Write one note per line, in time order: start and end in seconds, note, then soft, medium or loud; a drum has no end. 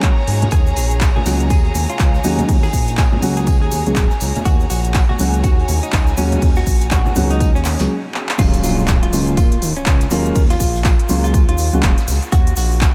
0.00 7.90 G#4 medium
0.00 7.90 C#5 medium
0.00 0.52 G#5 medium
0.00 7.90 A#5 medium
0.00 kick loud
0.00 clap loud
0.00 closed hi-hat medium
0.27 0.47 G#2 medium
0.27 open hi-hat loud
0.42 closed hi-hat soft
0.42 high conga medium
0.51 0.72 D#2 loud
0.51 0.73 G#4 loud
0.51 kick loud
0.51 closed hi-hat medium
0.51 tambourine medium
0.51 shaker soft
0.67 closed hi-hat soft
0.67 shaker soft
0.72 4.63 G#5 medium
0.72 tambourine medium
0.77 1.10 A#1 medium
0.77 1.08 G#4 medium
0.77 open hi-hat loud
0.77 shaker medium
0.91 closed hi-hat soft
0.91 shaker soft
1.01 kick loud
1.01 snare loud
1.01 clap loud
1.01 closed hi-hat medium
1.01 tambourine medium
1.01 shaker medium
1.16 1.45 G#4 medium
1.16 high conga loud
1.25 1.52 C#2 medium
1.25 1.44 F#3 medium
1.25 1.44 G#3 medium
1.25 1.44 A#3 medium
1.25 1.44 C#4 medium
1.25 1.44 F#4 medium
1.25 snare loud
1.25 open hi-hat loud
1.25 tambourine medium
1.25 shaker medium
1.40 closed hi-hat soft
1.40 shaker soft
1.50 1.70 D#2 medium
1.50 1.82 G#4 medium
1.50 kick loud
1.50 closed hi-hat medium
1.50 tambourine loud
1.50 shaker soft
1.65 closed hi-hat soft
1.74 1.86 D#2 medium
1.74 open hi-hat loud
1.74 tambourine medium
1.74 high conga medium
1.74 shaker medium
1.90 2.19 F4 medium
1.90 closed hi-hat medium
1.90 shaker soft
1.99 2.19 C#2 medium
1.99 kick loud
1.99 snare loud
1.99 clap loud
1.99 closed hi-hat medium
1.99 tambourine medium
1.99 shaker medium
2.14 snare soft
2.14 shaker soft
2.24 2.44 D#2 medium
2.24 2.52 F#3 medium
2.24 2.52 G#3 medium
2.24 2.52 A#3 medium
2.24 2.52 C#4 medium
2.24 2.55 D#4 medium
2.24 2.52 F#4 medium
2.24 open hi-hat loud
2.24 tambourine medium
2.24 shaker medium
2.38 closed hi-hat medium
2.38 high conga medium
2.38 shaker soft
2.49 2.69 D#2 loud
2.49 kick loud
2.49 closed hi-hat medium
2.49 open hi-hat medium
2.49 shaker soft
2.63 2.92 G#4 medium
2.63 snare soft
2.63 shaker soft
2.73 3.07 A#1 medium
2.73 kick medium
2.73 open hi-hat loud
2.73 tambourine medium
2.73 shaker medium
2.88 closed hi-hat medium
2.88 closed hi-hat soft
2.88 shaker soft
2.97 3.29 G#4 medium
2.97 kick loud
2.97 snare loud
2.97 clap loud
2.97 closed hi-hat medium
2.97 tambourine medium
2.97 shaker medium
3.12 high conga medium
3.12 low conga medium
3.22 3.63 C#2 medium
3.22 3.50 F#3 medium
3.22 3.50 G#3 medium
3.22 3.50 A#3 medium
3.22 3.50 C#4 medium
3.22 3.51 F#4 loud
3.22 open hi-hat loud
3.22 tambourine medium
3.22 shaker medium
3.37 3.56 G#4 medium
3.37 closed hi-hat medium
3.37 closed hi-hat soft
3.37 shaker soft
3.47 kick loud
3.47 closed hi-hat medium
3.47 tambourine medium
3.47 shaker soft
3.62 3.69 D#2 medium
3.62 3.91 G#4 medium
3.62 closed hi-hat soft
3.71 3.83 D#2 medium
3.71 open hi-hat loud
3.71 tambourine medium
3.71 high conga medium
3.71 shaker medium
3.86 3.94 C#2 medium
3.86 4.02 F#3 medium
3.86 4.02 G#3 medium
3.86 4.02 A#3 medium
3.86 4.02 C#4 medium
3.86 4.02 G#4 medium
3.86 closed hi-hat medium
3.86 shaker soft
3.96 4.07 D#1 medium
3.96 kick loud
3.96 snare loud
3.96 clap loud
3.96 closed hi-hat medium
3.96 tambourine medium
3.96 shaker soft
4.11 snare soft
4.11 shaker soft
4.20 4.32 C#2 loud
4.20 open hi-hat loud
4.20 tambourine medium
4.20 shaker medium
4.35 closed hi-hat medium
4.35 high conga medium
4.35 shaker soft
4.45 4.65 D#2 loud
4.45 4.66 F#4 loud
4.45 kick loud
4.45 closed hi-hat medium
4.45 tambourine medium
4.45 shaker soft
4.60 closed hi-hat soft
4.60 shaker soft
4.65 7.90 G#5 medium
4.70 5.04 A#1 medium
4.70 5.01 F#4 medium
4.70 open hi-hat loud
4.70 tambourine medium
4.70 shaker medium
4.84 closed hi-hat medium
4.84 shaker soft
4.94 kick loud
4.94 snare loud
4.94 clap loud
4.94 closed hi-hat medium
4.94 tambourine medium
4.94 shaker soft
5.09 5.38 F#4 loud
5.09 high conga medium
5.19 5.45 C#2 medium
5.19 5.37 F#3 medium
5.19 5.38 G#3 medium
5.19 5.38 A#3 medium
5.19 5.38 C#4 medium
5.19 5.38 F#4 medium
5.19 open hi-hat loud
5.19 tambourine medium
5.19 shaker medium
5.34 closed hi-hat medium
5.34 shaker soft
5.43 5.64 D#2 medium
5.43 5.75 F#4 medium
5.43 kick loud
5.43 closed hi-hat medium
5.43 tambourine medium
5.43 shaker soft
5.59 closed hi-hat soft
5.68 5.80 D#2 medium
5.68 open hi-hat loud
5.68 tambourine medium
5.68 high conga medium
5.68 shaker medium
5.83 6.12 D#4 medium
5.83 closed hi-hat medium
5.83 shaker soft
5.92 6.13 C#2 medium
5.92 kick loud
5.92 snare loud
5.92 clap loud
5.92 closed hi-hat medium
5.92 tambourine medium
5.92 shaker soft
6.07 snare soft
6.07 shaker soft
6.17 6.37 D#2 medium
6.17 6.45 F#3 medium
6.17 6.45 G#3 medium
6.17 6.45 A#3 medium
6.17 6.49 C#4 medium
6.17 6.46 C#4 medium
6.17 6.46 F#4 loud
6.17 open hi-hat loud
6.17 tambourine medium
6.17 shaker medium
6.32 closed hi-hat medium
6.32 high conga medium
6.32 shaker soft
6.42 6.62 D#2 loud
6.42 kick loud
6.42 closed hi-hat medium
6.42 open hi-hat medium
6.42 shaker soft
6.56 6.86 F#4 medium
6.56 snare soft
6.56 shaker soft
6.67 7.00 A#1 medium
6.67 kick medium
6.67 open hi-hat loud
6.67 tambourine medium
6.67 shaker medium
6.81 closed hi-hat soft
6.81 closed hi-hat medium
6.81 shaker soft
6.91 7.23 F#4 medium
6.91 kick loud
6.91 snare loud
6.91 clap loud
6.91 closed hi-hat medium
6.91 tambourine medium
6.91 low conga medium
6.91 shaker soft
7.06 high conga loud
7.06 shaker soft
7.15 7.57 C#2 medium
7.15 7.44 F#3 medium
7.15 7.44 G#3 medium
7.15 7.44 A#3 medium
7.15 7.44 C#4 medium
7.15 7.44 F#4 loud
7.15 open hi-hat loud
7.15 tambourine medium
7.15 low conga medium
7.15 shaker medium
7.30 7.50 D#4 medium
7.30 closed hi-hat medium
7.30 closed hi-hat soft
7.30 shaker soft
7.40 kick loud
7.40 closed hi-hat medium
7.40 tambourine medium
7.40 shaker soft
7.55 7.63 D#2 medium
7.55 7.84 C#4 medium
7.55 closed hi-hat soft
7.55 shaker soft
7.65 7.76 D#2 medium
7.65 snare loud
7.65 clap medium
7.65 open hi-hat loud
7.65 tambourine medium
7.65 high conga medium
7.65 shaker medium
7.79 7.87 C#2 medium
7.79 7.89 F#3 medium
7.79 7.90 G#3 medium
7.79 7.90 A#3 medium
7.79 7.90 C#4 medium
7.79 7.90 G#4 medium
7.79 snare loud
7.79 closed hi-hat medium
7.79 tambourine medium
7.79 shaker soft
8.14 clap medium
8.29 clap loud
8.38 8.59 D#2 loud
8.38 9.08 F#3 loud
8.38 9.08 G#3 medium
8.38 9.09 A#3 medium
8.38 9.09 C#4 medium
8.38 8.60 F4 loud
8.38 9.09 F4 loud
8.38 kick loud
8.38 closed hi-hat medium
8.38 tambourine medium
8.38 crash loud
8.38 impact medium
8.38 shaker medium
8.54 closed hi-hat soft
8.54 closed hi-hat medium
8.54 shaker soft
8.63 8.97 A#1 medium
8.63 8.95 F4 medium
8.63 open hi-hat loud
8.63 tambourine medium
8.63 shaker loud
8.79 shaker soft
8.87 kick loud
8.87 snare loud
8.87 clap loud
8.87 closed hi-hat medium
8.87 tambourine medium
8.87 shaker medium
9.03 9.32 F4 medium
9.03 closed hi-hat medium
9.12 9.39 C#2 medium
9.12 9.31 F#3 medium
9.12 9.31 G#3 medium
9.12 9.31 A#3 medium
9.12 9.31 C#4 medium
9.12 9.31 F4 medium
9.12 open hi-hat loud
9.12 tambourine medium
9.12 shaker medium
9.27 closed hi-hat soft
9.27 shaker soft
9.37 9.57 A#2 medium
9.37 9.69 F4 medium
9.37 kick loud
9.37 closed hi-hat medium
9.37 tambourine medium
9.37 shaker soft
9.52 closed hi-hat soft
9.52 closed hi-hat medium
9.62 9.73 D#2 medium
9.62 open hi-hat loud
9.62 tambourine medium
9.62 shaker medium
9.76 10.06 C#4 loud
9.76 closed hi-hat soft
9.76 shaker soft
9.86 10.06 C#2 medium
9.86 kick loud
9.86 snare loud
9.86 clap loud
9.86 closed hi-hat medium
9.86 tambourine medium
9.86 shaker soft
10.01 snare soft
10.01 closed hi-hat medium
10.01 shaker soft
10.10 10.31 D#2 medium
10.10 10.39 F#3 medium
10.10 10.39 G#3 medium
10.10 10.39 A#3 medium
10.10 10.42 A#3 medium
10.10 10.39 C#4 medium
10.10 10.39 F4 loud
10.10 open hi-hat loud
10.10 tambourine medium
10.10 shaker medium
10.25 closed hi-hat soft
10.25 shaker soft
10.35 10.56 D#2 loud
10.35 kick loud
10.35 closed hi-hat medium
10.35 open hi-hat medium
10.35 shaker medium
10.50 10.79 F4 medium
10.50 snare soft
10.50 closed hi-hat medium
10.50 shaker soft
10.60 10.94 A#1 medium
10.60 kick medium
10.60 open hi-hat loud
10.60 tambourine medium
10.60 shaker loud
10.75 closed hi-hat soft
10.75 shaker soft
10.84 11.16 F4 medium
10.84 kick loud
10.84 snare loud
10.84 clap loud
10.84 closed hi-hat medium
10.84 tambourine medium
10.84 shaker medium
10.99 closed hi-hat medium
11.09 11.50 C#2 medium
11.09 11.37 F#3 medium
11.09 11.37 G#3 medium
11.09 11.37 A#3 medium
11.09 11.37 C#4 medium
11.09 11.37 F4 loud
11.09 open hi-hat loud
11.09 tambourine medium
11.09 shaker loud
11.24 11.43 F4 medium
11.24 closed hi-hat soft
11.24 shaker soft
11.34 kick loud
11.34 closed hi-hat medium
11.34 tambourine medium
11.34 shaker medium
11.49 11.56 D#2 medium
11.49 11.78 F4 medium
11.49 closed hi-hat medium
11.49 closed hi-hat soft
11.58 11.70 D#2 medium
11.58 open hi-hat loud
11.58 tambourine medium
11.58 shaker medium
11.73 11.81 C#2 medium
11.73 11.89 F#3 medium
11.73 11.89 G#3 medium
11.73 11.89 A#3 medium
11.73 11.89 C#4 medium
11.73 11.89 F#4 medium
11.73 closed hi-hat soft
11.73 shaker soft
11.83 11.94 D#1 medium
11.83 kick loud
11.83 snare loud
11.83 clap loud
11.83 closed hi-hat medium
11.83 tambourine medium
11.83 shaker medium
11.98 snare soft
11.98 closed hi-hat medium
11.98 shaker soft
12.08 12.19 C#2 loud
12.08 open hi-hat loud
12.08 tambourine medium
12.08 shaker loud
12.22 closed hi-hat soft
12.22 shaker soft
12.32 12.52 D#2 loud
12.32 12.53 F#4 loud
12.32 kick loud
12.32 closed hi-hat medium
12.32 tambourine medium
12.32 shaker medium
12.46 closed hi-hat soft
12.46 closed hi-hat medium
12.46 shaker soft
12.56 12.91 A#1 medium
12.56 12.88 F#4 loud
12.56 open hi-hat loud
12.56 tambourine medium
12.56 shaker loud
12.72 shaker soft
12.81 kick loud
12.81 snare loud
12.81 clap loud
12.81 closed hi-hat medium
12.81 tambourine medium
12.81 shaker medium